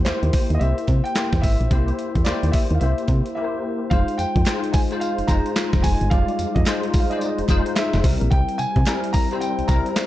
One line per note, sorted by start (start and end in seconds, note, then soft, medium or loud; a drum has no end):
0.00 0.06 A#3 medium
0.00 0.06 E4 medium
0.00 0.07 G4 medium
0.00 0.07 C5 loud
0.05 0.13 D#2 soft
0.05 0.56 A#3 medium
0.05 0.56 E4 medium
0.05 0.56 G4 medium
0.05 0.56 C5 medium
0.05 snare loud
0.05 clap medium
0.05 closed hi-hat medium
0.23 0.31 D#2 medium
0.23 closed hi-hat medium
0.33 kick medium
0.33 open hi-hat medium
0.50 0.58 D#2 medium
0.50 closed hi-hat soft
0.55 0.60 D#5 medium
0.59 0.74 C2 loud
0.59 1.11 A#3 medium
0.59 1.11 E4 medium
0.59 1.11 G4 medium
0.59 1.11 C5 medium
0.59 1.06 E5 medium
0.59 closed hi-hat medium
0.78 closed hi-hat soft
0.88 1.02 C3 medium
0.88 kick medium
0.88 clap medium
0.88 closed hi-hat medium
1.04 1.44 G5 loud
1.04 closed hi-hat medium
1.16 1.66 A#3 medium
1.16 1.66 E4 medium
1.16 1.66 G4 medium
1.16 1.66 C5 medium
1.16 snare loud
1.16 clap medium
1.16 closed hi-hat medium
1.33 1.41 E2 medium
1.33 kick medium
1.33 snare medium
1.33 closed hi-hat medium
1.42 1.57 G#1 medium
1.42 2.28 E5 loud
1.42 kick medium
1.42 open hi-hat medium
1.60 1.69 A#1 medium
1.60 closed hi-hat soft
1.71 1.92 C2 loud
1.71 2.21 A#3 medium
1.71 2.21 E4 medium
1.71 2.21 G4 medium
1.71 2.21 C5 loud
1.71 kick loud
1.71 closed hi-hat medium
1.88 closed hi-hat medium
1.99 closed hi-hat medium
2.15 2.24 E2 medium
2.15 kick medium
2.15 closed hi-hat soft
2.24 2.33 D#2 soft
2.24 2.76 A#3 medium
2.24 2.76 E4 medium
2.24 2.76 G4 medium
2.24 2.76 C5 loud
2.24 2.53 D5 medium
2.24 snare loud
2.24 clap medium
2.24 closed hi-hat medium
2.43 2.51 D#2 medium
2.43 closed hi-hat medium
2.52 2.57 E5 medium
2.52 kick medium
2.52 open hi-hat medium
2.70 2.79 D#2 loud
2.70 closed hi-hat soft
2.75 2.80 F5 medium
2.80 2.94 C2 medium
2.80 3.31 A#3 medium
2.80 3.31 E4 medium
2.80 3.31 G4 medium
2.80 3.31 C5 medium
2.80 3.31 E5 medium
2.80 closed hi-hat medium
2.98 closed hi-hat medium
3.08 3.22 C3 loud
3.08 kick loud
3.08 clap medium
3.08 closed hi-hat medium
3.26 closed hi-hat medium
3.35 3.86 A#3 medium
3.35 3.86 E4 medium
3.35 3.86 G4 medium
3.35 3.45 A#4 medium
3.35 3.87 E5 medium
3.44 3.90 C5 medium
3.90 4.04 F1 loud
3.90 4.41 G#3 medium
3.90 4.41 D#4 medium
3.90 4.41 F4 medium
3.90 4.41 C5 medium
3.90 4.19 F5 loud
3.90 kick loud
3.90 closed hi-hat medium
4.08 closed hi-hat soft
4.18 4.26 F2 medium
4.18 4.75 G5 loud
4.18 closed hi-hat medium
4.18 tambourine medium
4.36 4.44 F2 medium
4.36 kick medium
4.36 closed hi-hat soft
4.46 4.84 G#3 medium
4.46 4.85 D#4 medium
4.46 4.85 F4 medium
4.46 4.85 C5 loud
4.46 snare loud
4.46 clap medium
4.46 closed hi-hat medium
4.46 tambourine loud
4.64 closed hi-hat medium
4.73 4.79 G#5 medium
4.73 kick loud
4.73 open hi-hat medium
4.73 tambourine medium
4.91 5.25 G#3 medium
4.91 5.25 D#4 medium
4.91 5.25 F4 medium
4.91 5.25 C5 loud
4.91 closed hi-hat medium
5.00 5.29 F5 medium
5.00 closed hi-hat medium
5.00 tambourine medium
5.18 5.23 F1 medium
5.18 closed hi-hat medium
5.28 5.42 F1 loud
5.28 6.04 G#3 medium
5.28 6.04 D#4 medium
5.28 6.04 F4 medium
5.28 6.04 C5 medium
5.28 5.85 A#5 loud
5.28 kick loud
5.28 clap medium
5.28 closed hi-hat medium
5.28 tambourine medium
5.46 closed hi-hat medium
5.56 snare loud
5.56 clap medium
5.56 closed hi-hat medium
5.56 tambourine loud
5.73 5.81 F1 loud
5.73 kick loud
5.73 snare medium
5.73 closed hi-hat medium
5.82 5.97 F1 loud
5.82 6.11 G#5 loud
5.82 kick medium
5.82 open hi-hat medium
5.82 tambourine medium
6.01 6.09 G1 medium
6.01 closed hi-hat medium
6.10 6.25 F1 loud
6.10 6.19 G3 medium
6.10 6.61 D#4 medium
6.10 6.62 F4 medium
6.10 6.62 D5 medium
6.10 6.57 F5 loud
6.10 kick loud
6.10 closed hi-hat medium
6.18 6.64 G#3 medium
6.28 closed hi-hat medium
6.39 6.46 F2 soft
6.39 closed hi-hat medium
6.39 tambourine medium
6.55 6.64 F2 medium
6.55 6.96 D#5 medium
6.55 kick medium
6.55 closed hi-hat soft
6.66 7.05 G#3 medium
6.66 7.05 D#4 medium
6.66 7.05 F4 medium
6.66 7.05 C5 loud
6.66 snare loud
6.66 clap medium
6.66 clap loud
6.66 closed hi-hat medium
6.66 tambourine loud
6.83 closed hi-hat medium
6.94 kick loud
6.94 open hi-hat medium
6.94 tambourine medium
6.99 7.10 F5 medium
7.10 7.45 G#3 medium
7.10 7.45 D#4 medium
7.10 7.45 F4 medium
7.10 7.46 C5 medium
7.10 7.17 D#5 medium
7.10 closed hi-hat medium
7.17 7.27 D5 medium
7.21 closed hi-hat medium
7.21 tambourine medium
7.26 7.38 D#5 medium
7.38 7.43 F1 soft
7.38 closed hi-hat soft
7.49 7.62 F1 medium
7.49 8.04 G#3 medium
7.49 8.04 D#4 medium
7.49 8.04 F4 medium
7.49 8.05 C5 loud
7.49 kick loud
7.49 clap medium
7.49 closed hi-hat medium
7.49 tambourine medium
7.66 closed hi-hat medium
7.76 8.33 E5 medium
7.76 snare loud
7.76 clap medium
7.76 closed hi-hat medium
7.76 tambourine medium
7.93 8.02 F1 loud
7.93 snare medium
7.93 closed hi-hat medium
8.04 8.17 C2 loud
8.04 8.79 G3 medium
8.04 8.79 C4 medium
8.04 8.79 E4 medium
8.04 8.79 A#4 medium
8.04 kick medium
8.04 open hi-hat medium
8.04 tambourine medium
8.21 8.29 A#1 medium
8.21 closed hi-hat medium
8.31 8.45 C2 loud
8.31 8.59 G5 loud
8.31 kick loud
8.31 closed hi-hat medium
8.49 closed hi-hat medium
8.58 8.66 C3 soft
8.58 9.10 G#5 loud
8.58 closed hi-hat medium
8.58 tambourine medium
8.76 8.84 C3 medium
8.76 kick medium
8.76 closed hi-hat soft
8.86 9.25 G3 medium
8.86 9.25 C4 medium
8.86 9.25 E4 medium
8.86 9.25 A#4 medium
8.86 snare loud
8.86 clap medium
8.86 closed hi-hat medium
8.86 tambourine loud
9.04 closed hi-hat medium
9.13 9.42 A#5 loud
9.13 kick loud
9.13 open hi-hat medium
9.13 tambourine medium
9.31 9.65 G3 medium
9.31 9.65 C4 medium
9.31 9.66 E4 medium
9.31 9.66 C5 loud
9.31 closed hi-hat medium
9.41 9.69 G5 loud
9.41 closed hi-hat medium
9.41 tambourine medium
9.59 9.63 C2 soft
9.59 closed hi-hat medium
9.68 9.82 C2 medium
9.68 10.06 G3 medium
9.68 10.06 C4 medium
9.68 10.06 E4 medium
9.68 10.06 A#4 loud
9.68 10.06 A#5 loud
9.68 kick loud
9.68 clap medium
9.68 closed hi-hat medium
9.68 tambourine medium
9.86 closed hi-hat medium
9.96 snare loud
9.96 clap medium
9.96 closed hi-hat medium
9.96 tambourine loud